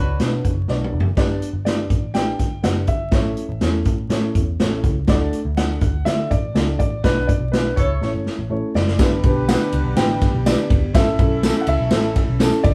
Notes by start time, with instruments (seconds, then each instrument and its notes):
Already playing: picked electric bass C#2, horn section D4 F#4 B4, grand piano C#5
0.19 picked electric bass B2, upright piano B3 D4 F#4 B4, snare, closed hi-hat
0.45 picked electric bass F#1, kick, closed hi-hat
0.68 picked electric bass B1, upright piano B3 D4 F#4 D5, snare
0.84 mid tom
0.93 picked electric bass F#1
1.00 floor tom
1.17 picked electric bass G1, upright piano B3 D4 G4 D5, kick, snare, splash
1.42 closed hi-hat
1.53 picked electric bass G1
1.65 upright piano B3 D4 G4 D5, grand piano D5, snare, closed hi-hat
1.90 picked electric bass A1, kick, closed hi-hat
2.14 upright piano B3 D4 G4 D5, grand piano G5, snare, closed hi-hat
2.38 picked electric bass G1, kick, snare, closed hi-hat
2.63 picked electric bass F#1, upright piano B3 D4 G4 D5, grand piano F#5, snare, closed hi-hat
2.87 picked electric bass G1, grand piano E5, kick, closed hi-hat
3.12 picked electric bass A1, upright piano A3 C#4 E4 C#5, kick, snare, closed hi-hat
3.37 closed hi-hat
3.49 picked electric bass A1
3.61 picked electric bass E2, upright piano A3 C#4 E4 C#5, snare, closed hi-hat
3.85 picked electric bass A2, kick, closed hi-hat
4.09 picked electric bass A2, upright piano A3 C#4 E4 C#5, snare, closed hi-hat
4.35 picked electric bass E2, kick, closed hi-hat
4.60 picked electric bass A1, upright piano A3 C#4 E4 C#5, snare, closed hi-hat
4.84 picked electric bass C#2, kick, closed hi-hat
5.07 picked electric bass D2, upright piano A3 D4 F#4 D5, kick, snare, closed hi-hat
5.33 closed hi-hat
5.45 picked electric bass D2
5.56 upright piano A3 D4 F#4 D5, grand piano F#5, snare, closed hi-hat
5.81 picked electric bass D2, kick, closed hi-hat
6.05 picked electric bass D3, upright piano A3 D4 F#4 D5, grand piano E5, snare, closed hi-hat
6.31 picked electric bass A1, grand piano D5, kick, closed hi-hat
6.54 picked electric bass C#2, upright piano A3 D4 F#4 D5, snare, closed hi-hat
6.79 picked electric bass A1, grand piano D5, kick, closed hi-hat
7.03 picked electric bass B1, upright piano B3 D4 F#4 D5, horn section D4 F#4 B4, grand piano B4, kick, snare, closed hi-hat
7.27 grand piano D5, kick, closed hi-hat
7.40 picked electric bass B1
7.52 upright piano B3 D4 F#4 D5, grand piano B4, snare, closed hi-hat
7.76 picked electric bass C#2, horn section E4 A4 C#5, grand piano C#5, kick, closed hi-hat
8.01 picked electric bass A1, upright piano A3 C#4 E4 C#5, snare
8.14 picked electric bass G1
8.26 snare
8.39 picked electric bass A1
8.49 picked electric bass A1, upright piano A3 C#4 E4 C#5
8.75 picked electric bass F#1, grand piano D5, snare
8.87 snare
8.98 picked electric bass G1, tonewheel organ D3 B3 G4, upright piano D4 G4 B4, horn section D4 G4 B4, kick, snare, ride, tambourine
9.23 picked electric bass B1, upright piano D4 G4 B4, kick, ride
9.48 upright piano D4 G4 B4, grand piano F#5, snare, ride, tambourine
9.72 picked electric bass C#2, ride
9.85 picked electric bass B1
9.96 picked electric bass A1, upright piano D4 G4 B4, grand piano G5, snare, ride, tambourine
10.20 kick, snare, ride
10.33 picked electric bass B1
10.46 upright piano D4 G4 B4, grand piano D5, snare, ride, tambourine
10.70 picked electric bass C#2, kick, ride
10.82 picked electric bass G1
10.93 picked electric bass A1, tonewheel organ E3 C#4 A4, upright piano C#4 E4 A4, horn section C#4 E4 A4, grand piano E5, kick, snare, ride, tambourine
11.18 picked electric bass B1, upright piano C#4 E4 A4, kick, ride
11.43 upright piano C#4 E4 A4, snare, ride, tambourine
11.61 grand piano F#5
11.67 picked electric bass C#2, grand piano E5, ride
11.79 picked electric bass B1
11.89 upright piano C#4 E4 A4, snare, ride, tambourine
12.15 kick, snare, ride
12.29 picked electric bass B1
12.39 upright piano C#4 E4 A4, snare, ride, tambourine
12.63 picked electric bass C#2, grand piano D5, kick, ride